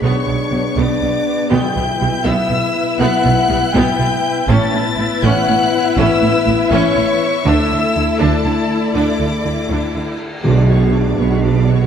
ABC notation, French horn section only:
X:1
M:6/8
L:1/8
Q:3/8=81
K:Bm
V:1 name="French horn section"
[B,D]6 | [B,E]6- | [B,E]6 | [B,E]6- |
[B,E]6 | [A,E]6- | [A,E]4- [A,E] z | [B,D]6 |]